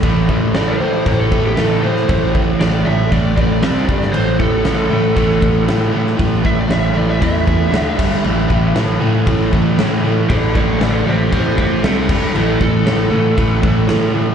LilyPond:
<<
  \new Staff \with { instrumentName = "Lead electric guitar" } { \time 4/4 \key a \minor \tempo 4 = 117 r4 d''16 c''4 a'8 g'16 a'8 c''8~ | c''8 r8 d''8 e''8 d''8 d''4. | c''8 a'2. r8 | r8 e''16 d''16 e''16 e''16 d''16 e''16 e''2~ |
e''4 r2. | <a' d''>8 <a' d''>8 <a' d''>8 <g' c''>8 <g' c''>8 <g' c''>8 <e' a'>8 <e' a'>8 | <e' a'>8 a'2. r8 | }
  \new Staff \with { instrumentName = "Overdriven electric guitar" } { \clef bass \time 4/4 \key a \minor <a, e a>8 <a, e a>8 <a, e a>8 <a, e a>8 <a, e a>8 <a, e a>8 <a, e a>8 <a, e a>8 | <a, e a>8 <a, e a>8 <a, e a>8 <a, e a>8 <a, e a>8 <a, e a>8 <c g c'>8 <g, d g>8 | <a, e a>8 <a, e a>8 <a, e a>8 <a, e a>8 <a, e a>8 <a, e a>8 <a, e a>8 <a, e a>8 | <a, e a>8 <a, e a>8 <a, e a>8 <a, e a>8 <a, e a>8 <a, e a>8 <d a d'>8 <g, d g>8 |
<a, e a>8 <a, e a>8 <a, e a>8 <a, e a>8 <a, e a>8 <a, e a>8 <a, e a>8 <a, e a>8 | <a, e a>8 <a, e a>8 <a, e a>8 <a, e a>8 <a, e a>8 <a, e a>8 <c g c'>8 <g, d g>8 | <a, e a>8 <a, e a>8 <a, e a>8 <a, e a>8 <a, e a>8 <a, e a>8 <a, e a>8 <a, e a>8 | }
  \new Staff \with { instrumentName = "Picked electric bass" } { \clef bass \time 4/4 \key a \minor a,,8 a,,8 a,,8 a,8 a,,8 a,,8 a,4 | a,,4 a,,8 a,,8 a,,4 c,8 g,,8 | a,,8 a,,8 a,,8 a,8 a,,8 a,,8 a,4 | a,,4 a,,8 a,,8 e,4 d,8 g,,8 |
a,,8 a,,8 a,,8 a,8 a,,8 a,,8 a,4 | a,,4 a,,8 a,,8 a,,4 c,8 g,,8 | a,,8 a,,8 a,,8 a,8 a,,8 a,,8 a,4 | }
  \new DrumStaff \with { instrumentName = "Drums" } \drummode { \time 4/4 <cymc bd>8 bd8 <cymc sn>4 <cymc bd>8 bd8 <cymc sn>8. sn16 | <cymc bd>8 bd8 <cymc sn>4 <cymc bd>8 bd8 <cymc sn>8 bd16 sn16 | cymc8 bd8 <cymc sn>4 <cymc bd>8 bd8 <cymc sn>8. sn16 | <cymc bd>8 bd8 <cymc sn>4 <cymc bd>8 bd8 <cymc sn>8 <cymc bd>16 sn16 |
cymc8 bd8 <cymc sn>4 <cymc bd>8 bd8 <cymc sn>4 | <cymc bd>8 bd8 <cymc sn>4 <cymc bd>8 bd8 <cymc sn>8 <cymc bd>8 | cymc8 bd8 <cymc sn>4 <cymc bd>8 bd8 <cymc sn>4 | }
>>